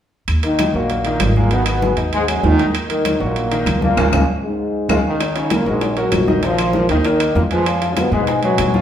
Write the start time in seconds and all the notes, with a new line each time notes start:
0.28 D#2, high conga, high timbale, claves
0.43 D#3 A#3 D#4 A#4, high conga, high timbale
0.59 high conga, high timbale, claves
0.74 A#1 A#2 F#3 A#3 F#4, high conga
0.90 high conga, high timbale
1.05 D#3 D#4, high conga, high timbale
1.19 G#1, high conga, high timbale, low timbale, claves
1.36 A#2 G#3 A#3 G#4, high conga
1.51 B2 D#3 B3 D#4, high conga, high timbale
1.66 B2 B3, high conga, high timbale, claves
1.82 G#3 G#4, high conga
1.97 D#2 D#4 D#5, high conga, high timbale
2.13 G#2 G#3, high conga, high timbale
2.28 F#2 F#3 G#3 G#4, high conga, high timbale, claves
2.43 D#2 D#3 D#4, high conga, low timbale
2.58 D#3 D#4, high conga, high timbale
2.75 high conga, high timbale, claves
2.88 D#3 A#3 D#4 A#4, high conga, high timbale
3.05 high conga, high timbale, claves
3.20 A#1 A#2 F#3 A#3 F#4, high conga
3.36 high conga, high timbale
3.51 D#3 D#4, high conga, high timbale
3.66 C#2, high conga, high timbale, claves
3.81 A#2 F3 A#3 F4, high conga
3.97 C#2 G#3 C#4 F4, high conga, high timbale, claves
4.11 C#2 G#3 C#4 F4, high conga, high timbale, claves
4.44 G#2 G#3
4.89 C#2 G#2 G#3 C#4 F4, high conga, high timbale, claves
5.05 D#3 D#4
5.20 high bongo, high conga, high timbale, claves
5.35 C#3 C#4 C#5, high bongo, high conga, high timbale
5.50 A#2 A#3, high bongo, high conga, high timbale, claves
5.66 A#1 G#2 F#3 G#3 F#4 A#4, high bongo, high conga
5.81 high bongo, high conga, high timbale
5.96 F#2 F#3 F#4 A#4, high conga, high timbale
6.12 A#1, high bongo, low bongo, high conga, high timbale, low timbale, claves
6.27 D#3 D#4 D#5, high bongo, high conga
6.43 D#3 F3 D#4 F4 D#5, high bongo, high conga, high timbale
6.58 high bongo, high conga, high timbale, claves
6.73 A#3 A#4, high bongo, high conga
6.89 D#2 D#3 D#4 D#5, high bongo, high conga, high timbale
7.05 D#3 A#3 D#4 A#4, high bongo, high conga, high timbale
7.20 A#3 A#4, high conga, high timbale, claves
7.35 F2 A#2 A#3, high bongo, low bongo, high conga
7.51 F3 G#3 F4 G#4 B4, high bongo, high timbale
7.66 high bongo, high conga, high timbale, claves
7.82 F3 F4 F5, high bongo, high conga, high timbale
7.94 C#4, high bongo, high conga, high timbale, claves
7.98 B2 B3
8.12 G#2 B2 G#3 G#4 B4, high bongo, high conga
8.27 high bongo, high conga, high timbale
8.43 F#2 F#3 G#3 G#4 B4, high conga, high timbale
8.58 A#2, high bongo, low bongo, high conga, high timbale, claves
8.74 F3 F4 F5, high bongo, high conga